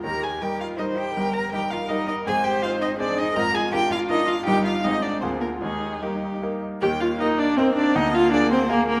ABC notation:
X:1
M:3/4
L:1/8
Q:1/4=161
K:Eb
V:1 name="Violin"
b a g f e g- | g b g f e e | a g f e d e | b a g f e f |
g f e d c B | A2 G3 z | g f e d c d | e f d c B B |]
V:2 name="Cello"
B A G F E G- | G B G F E E | A G F E D E | B A G F E F |
G F E D C B, | A,2 G,3 z | B,4 C2 | B,6 |]
V:3 name="Viola"
G2 B2 c2 | B2 B4 | c4 A2 | F6 |
E2 E2 F2 | E4- E z | G F E D C D | E F D C B, B, |]
V:4 name="Grand piano"
[E,,E,]2 [G,EB]2 [G,EB]2 | [G,,,G,,]2 [G,EB]2 [G,EB]2 | [A,,,A,,]2 [CEc]2 [CEc]2 | [A,,,A,,]2 [DFB]2 [DFB]2 |
[G,,,G,,EGB]2 [A,,,A,,CFA]2 [D,,D,B,FA]2 | [E,,E,]2 [B,EB]2 [B,EB]2 | [E,,E,]2 [B,EB]2 [B,EB]2 | [D,,D,]2 [B,FA]2 [B,FA]2 |]